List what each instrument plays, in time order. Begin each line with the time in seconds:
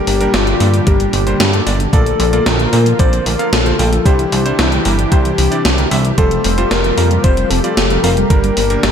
Already playing: analog synth pad A#2 D3 G3 D4 G4, fm electric piano G4, soft synth lead G4
0.07 analog synth bass G1, electric grand piano G3 A#3 D4 A#4, synth arpeggio sound A#3, open hi-hat
0.21 electric grand piano G3 A#3 D4 A#4, synth arpeggio sound D4, closed hi-hat
0.34 analog synth bass G1, electric grand piano G3 A#3 D4 D5, fm electric piano F4, soft synth lead F4, synth arpeggio sound G4, snare, closed hi-hat
0.47 synth arpeggio sound D3, closed hi-hat
0.60 analog synth bass G2, electric grand piano G3 A#3 D4 A4, synth arpeggio sound A#3, open hi-hat
0.74 synth arpeggio sound G3, closed hi-hat
0.87 analog synth bass G1, synth arpeggio sound D3, electric grand piano G3 A#3 D4 A#4, soft synth lead G4, fm electric piano G4, kick, closed hi-hat
1.00 synth arpeggio sound G3, closed hi-hat
1.13 analog synth bass G1, synth arpeggio sound A#3, open hi-hat
1.26 synth arpeggio sound D3, electric grand piano G3 A#3 D4 C5, closed hi-hat
1.40 analog synth bass G2, synth arpeggio sound G3, snare, closed hi-hat
1.53 electric grand piano G3 A#3 D4 A4, synth arpeggio sound D4, closed hi-hat
1.66 analog synth bass G1, electric grand piano G3 A#3 D4 D5, synth arpeggio sound D4, open hi-hat
1.80 synth arpeggio sound D3, closed hi-hat
1.93 analog synth bass A#1, synth arpeggio sound D3, analog synth pad F3 A#3 F4, electric grand piano A#3 F4 A4 D5, soft synth lead A4, fm electric piano A4, kick, closed hi-hat
2.06 synth arpeggio sound F3, closed hi-hat
2.20 analog synth bass A#1, synth arpeggio sound A3, electric grand piano A#3 F4 A4 D5, open hi-hat
2.33 synth arpeggio sound A#3, electric grand piano A#3 F4 A4 D5, closed hi-hat
2.46 analog synth bass A#1, electric grand piano A#3 F4 A4 G5, synth arpeggio sound D4, soft synth lead A#4, fm electric piano A#4, snare, closed hi-hat
2.60 synth arpeggio sound D3, closed hi-hat
2.73 analog synth bass A#2, synth arpeggio sound A3, electric grand piano A#3 F4 A4 C5, open hi-hat
2.86 synth arpeggio sound F3, closed hi-hat
2.99 analog synth bass A#1, synth arpeggio sound D3, electric grand piano A#3 F4 A4 D5, soft synth lead C5, fm electric piano C5, kick, closed hi-hat
3.12 synth arpeggio sound F3, closed hi-hat
3.26 analog synth bass A#1, synth arpeggio sound A3, soft synth lead A#4, fm electric piano A#4, open hi-hat
3.39 electric grand piano A#3 F4 A4 F5, synth arpeggio sound A#3, closed hi-hat
3.52 analog synth bass A#1, synth arpeggio sound D4, soft synth lead A4, fm electric piano A4, snare, closed hi-hat
3.66 synth arpeggio sound D3, electric grand piano A#3 F4 A4 C5, closed hi-hat
3.79 analog synth bass A#1, synth arpeggio sound A3, electric grand piano A#3 F4 A4 G5, open hi-hat
3.92 synth arpeggio sound F3, closed hi-hat
4.05 analog synth bass C2, analog synth pad C3 E3 G3 D4 G4, electric grand piano G3 D4 E4 C5, soft synth lead G4, fm electric piano G4, kick, closed hi-hat
4.19 synth arpeggio sound E3, closed hi-hat
4.32 analog synth bass C2, electric grand piano G3 D4 E4 C5, synth arpeggio sound G3, open hi-hat
4.45 electric grand piano G3 D4 E4 C5, synth arpeggio sound C4, closed hi-hat
4.59 analog synth bass C2, electric grand piano G3 D4 E4 E5, synth arpeggio sound D4, soft synth lead E4, fm electric piano E4, snare, closed hi-hat
4.72 synth arpeggio sound D3, closed hi-hat
4.85 analog synth bass G1, synth arpeggio sound G3, electric grand piano G3 D4 E4 A#4, open hi-hat
4.98 synth arpeggio sound E3, closed hi-hat
5.12 analog synth bass C2, synth arpeggio sound D3, electric grand piano G3 D4 E4 C5, soft synth lead G4, fm electric piano G4, kick, closed hi-hat
5.25 synth arpeggio sound E3, closed hi-hat
5.38 analog synth bass C2, synth arpeggio sound G3, open hi-hat
5.51 electric grand piano G3 D4 E4 D5, synth arpeggio sound C4, closed hi-hat
5.65 analog synth bass C2, synth arpeggio sound D4, snare, closed hi-hat
5.78 synth arpeggio sound D3, electric grand piano G3 D4 E4 A#4, closed hi-hat
5.91 analog synth bass C2, electric grand piano G3 D4 E4 E5, synth arpeggio sound G3, open hi-hat
6.05 synth arpeggio sound E3, closed hi-hat
6.18 analog synth bass F1, synth arpeggio sound F3, analog synth pad F3 F4 G4, electric grand piano G3 C4 F4 C5, soft synth lead A4, fm electric piano A4, kick, closed hi-hat
6.31 synth arpeggio sound G3, closed hi-hat
6.44 analog synth bass F1, electric grand piano G3 C4 F4 C5, synth arpeggio sound C4, open hi-hat
6.58 electric grand piano G3 C4 F4 C5, synth arpeggio sound F4, closed hi-hat
6.70 analog synth bass F1, electric grand piano G3, synth arpeggio sound G4, soft synth lead A#4, fm electric piano A#4, snare, closed hi-hat
6.84 synth arpeggio sound F3, closed hi-hat
6.98 analog synth bass F2, electric grand piano G3 C4 F4 A#4, synth arpeggio sound C4, open hi-hat
7.11 synth arpeggio sound G3, closed hi-hat
7.24 analog synth bass F1, synth arpeggio sound F3, electric grand piano G3 C4 F4 C5, soft synth lead C5, fm electric piano C5, kick, closed hi-hat
7.37 synth arpeggio sound G3, closed hi-hat
7.50 analog synth bass F1, synth arpeggio sound C4, soft synth lead A4, fm electric piano A4, open hi-hat
7.64 electric grand piano G3 C4 F4 D5, synth arpeggio sound F4, closed hi-hat
7.77 analog synth bass F1, synth arpeggio sound G4, snare, closed hi-hat
7.90 synth arpeggio sound F3, electric grand piano G3 C4 F4 A#4, closed hi-hat
8.03 analog synth bass F1, electric grand piano G3 C4 F4 F5, synth arpeggio sound C4, soft synth lead A#4, fm electric piano A#4, open hi-hat
8.17 synth arpeggio sound G3, closed hi-hat
8.30 analog synth bass G1, analog synth pad A#2 D3 G3 D4, synth arpeggio sound D3, electric grand piano G3 A#3 D4 A#4, kick, closed hi-hat
8.44 synth arpeggio sound G3, closed hi-hat
8.57 analog synth bass G1, electric grand piano G3 A#3 D4 A#4, synth arpeggio sound A#3, open hi-hat
8.70 electric grand piano G3 A#3 D4 A#4, synth arpeggio sound D4, closed hi-hat
8.83 analog synth bass G1, electric grand piano G3 A#3 D4 D5, synth arpeggio sound G4, snare, closed hi-hat